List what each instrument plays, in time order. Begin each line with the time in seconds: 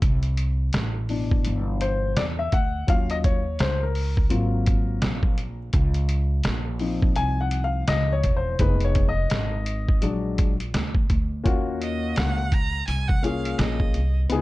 0.02 upright bass C2, kick, closed hi-hat
0.23 closed hi-hat
0.37 closed hi-hat
0.73 upright bass A1, snare, closed hi-hat
1.09 grand piano B2 E3 D4, open hi-hat
1.31 kick
1.45 upright bass G1, closed hi-hat
1.81 grand piano C5, closed hi-hat
2.17 upright bass E2, grand piano D5, snare, closed hi-hat
2.39 grand piano E5
2.52 upright bass D2, grand piano F#5, kick, closed hi-hat
2.87 upright bass D#2, grand piano F#3 C#4 F4 F5, kick, closed hi-hat
3.10 grand piano D#5, closed hi-hat
3.24 grand piano C#5, kick, closed hi-hat
3.59 upright bass C#2, grand piano C5, snare, closed hi-hat
3.83 grand piano A#4
3.95 open hi-hat
4.17 kick
4.30 upright bass G#1, grand piano F#3 A#3 C4 F4, closed hi-hat
4.66 kick, closed hi-hat
5.02 upright bass A#1, snare, closed hi-hat
5.23 kick
5.38 closed hi-hat
5.73 upright bass C#2, kick, closed hi-hat
5.94 closed hi-hat
6.09 closed hi-hat
6.44 upright bass A#1, snare, closed hi-hat
6.79 grand piano F3 C4 D#4, open hi-hat
7.02 kick
7.16 upright bass C2, grand piano G#5, closed hi-hat
7.41 grand piano F#5
7.51 closed hi-hat
7.64 grand piano F5
7.88 upright bass C#2, grand piano D#5, snare, closed hi-hat
8.13 grand piano C#5
8.24 upright bass E1, kick, closed hi-hat
8.37 grand piano C5
8.59 upright bass F1, grand piano G#3 B3 D#4 B4, kick, closed hi-hat
8.80 closed hi-hat
8.85 grand piano C#5
8.95 kick, closed hi-hat
9.09 grand piano D#5
9.30 upright bass G#1, snare, closed hi-hat
9.66 closed hi-hat
9.89 kick
10.02 upright bass A#1, grand piano F#3 G#3 D4, closed hi-hat
10.38 kick, closed hi-hat
10.60 closed hi-hat
10.74 upright bass D2, snare, closed hi-hat
10.95 kick
11.10 upright bass D2, kick, closed hi-hat
11.44 upright bass D#2, grand piano A#3 C#4 F4 F#4, kick, closed hi-hat
11.82 viola D#5, closed hi-hat
12.16 upright bass C#2, viola F#5, snare, closed hi-hat
12.52 viola A#5, kick, closed hi-hat
12.87 upright bass C2, viola G#5, closed hi-hat
13.08 viola F#5, kick
13.23 grand piano A#3 C#4 F4 G#4, viola F5, closed hi-hat
13.45 closed hi-hat
13.59 upright bass A#1, viola D#5, snare, closed hi-hat
13.80 kick
13.94 upright bass C2, closed hi-hat
14.29 upright bass C#2, grand piano B3 D#4 E4 G#4, closed hi-hat
14.38 grand piano F4